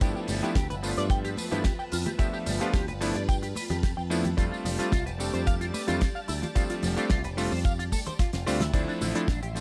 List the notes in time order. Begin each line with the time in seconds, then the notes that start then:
0.01 G2 F3 A3 B3 D4 E4 G4 B4 E5 A5, kick, closed hi-hat, tambourine
0.16 G4, tambourine
0.28 G1 G3, open hi-hat, tambourine, high conga
0.42 F3 A3 B3 D4 E4 G4, muted picked electric bass stroke, closed hi-hat, tambourine
0.55 D2 G4, kick, snare, closed hi-hat, tambourine
0.70 G1 B4, closed hi-hat, tambourine
0.82 F3 A3 B3 D4 F4 B4, open hi-hat, tambourine
0.97 G2 D5, closed hi-hat, tambourine
1.10 G5, kick, closed hi-hat, tambourine
1.25 G4, closed hi-hat, tambourine
1.37 B4, open hi-hat, tambourine, high conga
1.51 G2 F3 A3 B3 D4 E4 G4, closed hi-hat, tambourine, low conga
1.64 G4, kick, snare, closed hi-hat, tambourine
1.79 G5, tambourine
1.92 F2 F4, open hi-hat, tambourine
2.06 G4, closed hi-hat, tambourine, high conga, low conga
2.18 F3 A3 B3 D4 F4 G4 E5, kick, closed hi-hat, tambourine
2.33 G4, tambourine
2.46 G1 G3, open hi-hat, tambourine, high conga
2.60 F3 A3 B3 D4 F4 G4, muted picked electric bass stroke, closed hi-hat, tambourine
2.74 D2 G4, kick, snare, closed hi-hat, tambourine
2.88 G1 B4, closed hi-hat, tambourine
3.00 F3 A3 B3 D4 E4 B4, snare, open hi-hat, tambourine
3.15 G2 D5, closed hi-hat, tambourine
3.29 G5, kick, closed hi-hat, tambourine
3.43 G4, closed hi-hat, tambourine
3.56 B4, open hi-hat, tambourine, high conga
3.70 F2 G4, closed hi-hat, tambourine, low conga
3.83 G4, kick, snare, closed hi-hat, tambourine
3.97 F2 G5, tambourine
4.10 F3 A3 B3 D4 E4 F4, open hi-hat, tambourine
4.24 G4, closed hi-hat, tambourine, high conga, low conga
4.37 F2 G3 A3 C4 D4 F4 G4 D5, kick, closed hi-hat, tambourine
4.52 F4, tambourine
4.65 F1 F3, open hi-hat, tambourine, high conga
4.78 G3 A3 C4 D4 F4, muted picked electric bass stroke, closed hi-hat, tambourine
4.92 C2 F4, kick, snare, closed hi-hat, tambourine
5.06 F1 B4, closed hi-hat, tambourine
5.18 G3 A3 C4 D4 G4 A4, open hi-hat, tambourine
5.33 F2 C5, closed hi-hat, tambourine
5.47 F5, kick, closed hi-hat, tambourine
5.61 F4, closed hi-hat, tambourine
5.74 B4, open hi-hat, tambourine, high conga
5.87 F2 G3 A3 C4 D4 F4, closed hi-hat, tambourine, low conga
6.01 F4, kick, snare, closed hi-hat, tambourine
6.15 F5, tambourine
6.28 D2 E4, open hi-hat, tambourine
6.42 F4, closed hi-hat, tambourine, high conga, low conga
6.55 F3 G3 A3 C4 D4 F4, kick, closed hi-hat, tambourine
6.70 F4, closed hi-hat, tambourine
6.83 F1 F3, open hi-hat, tambourine, high conga
6.96 G3 A3 C4 D4 F4 G4, closed hi-hat, tambourine
7.10 C2 F4, kick, snare, closed hi-hat, tambourine
7.24 F1 B4, closed hi-hat, tambourine
7.37 G3 A3 C4 D4 F4 A4, snare, open hi-hat, tambourine
7.50 F2 C5, open hi-hat, tambourine
7.65 F5, kick, closed hi-hat, tambourine
7.79 F4, closed hi-hat, tambourine
7.92 A4, kick, open hi-hat, tambourine, high conga
8.06 C5, closed hi-hat, tambourine, low conga
8.19 F4, kick, snare, closed hi-hat, tambourine
8.33 F1 F4, snare, closed hi-hat, tambourine
8.46 D2 G3 A3 C4 D4 F4 C5, open hi-hat, tambourine
8.60 D2 E4, snare, closed hi-hat, tambourine, high conga, low conga
8.73 D2 F3 A3 C4 D4 E4 E5 C6, kick, closed hi-hat, crash, tambourine
8.88 D4, tambourine
9.01 A1 D3, open hi-hat, tambourine, high conga
9.15 F3 A3 C4 D4 E4, closed hi-hat, tambourine
9.28 A1 D4, kick, snare, closed hi-hat, tambourine
9.43 A1 G4, closed hi-hat, tambourine
9.55 F3 A3 C4 D4 F4, open hi-hat, tambourine